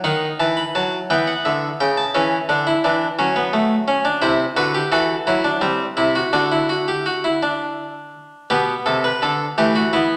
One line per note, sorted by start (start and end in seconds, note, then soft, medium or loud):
0.04 0.26 D#3 medium
0.04 1.07 D#4 medium
0.04 0.26 F#5 medium
0.40 0.61 E3 medium
0.40 0.57 A5 medium
0.57 0.74 B5 medium
0.75 0.97 F#3 medium
0.75 0.97 A5 medium
1.10 1.32 E3 medium
1.10 2.12 B3 medium
1.10 1.27 G5 medium
1.27 1.45 F#5 medium
1.45 1.67 D3 medium
1.45 1.67 E5 medium
1.80 2.02 C#3 medium
1.80 1.97 G5 medium
1.97 2.14 A5 medium
2.15 2.36 E3 medium
2.15 2.36 C#4 medium
2.15 4.18 E5 medium
2.49 2.71 D3 medium
2.49 2.66 D4 medium
2.67 2.84 E4 medium
2.84 3.06 E3 medium
2.84 3.06 D4 medium
3.19 4.19 F#3 medium
3.19 3.35 C#4 medium
3.36 3.53 B3 medium
3.53 3.75 A3 medium
3.88 4.04 C#4 medium
4.05 4.22 D4 medium
4.22 4.44 C3 medium
4.22 4.43 E4 medium
4.22 4.44 C5 medium
4.57 4.79 D3 medium
4.57 4.74 F#4 medium
4.57 4.79 B4 medium
4.75 4.92 G4 medium
4.92 5.14 E3 medium
4.92 5.14 F#4 medium
4.92 6.30 A4 medium
5.27 5.49 F#3 medium
5.27 5.44 E4 medium
5.44 5.62 D4 medium
5.61 5.84 G3 medium
5.61 5.84 C4 medium
5.97 6.20 C3 medium
5.97 6.15 E4 medium
6.15 6.32 F#4 medium
6.33 8.11 D3 medium
6.33 6.51 D4 medium
6.33 6.68 F#4 medium
6.52 6.70 E4 medium
6.69 6.88 F#4 medium
6.88 7.06 G4 medium
7.06 7.24 F#4 medium
7.24 7.42 E4 medium
7.43 8.48 D4 medium
8.50 8.73 B2 medium
8.50 9.54 B3 medium
8.50 8.73 G4 medium
8.86 9.08 C3 medium
8.86 9.04 A4 medium
9.04 9.22 B4 medium
9.22 9.44 D3 medium
9.22 9.44 A4 medium
9.58 10.17 E3 medium
9.58 9.80 A3 medium
9.58 9.75 G4 medium
9.75 9.93 F#4 medium
9.93 10.15 B3 medium
9.93 10.15 E4 medium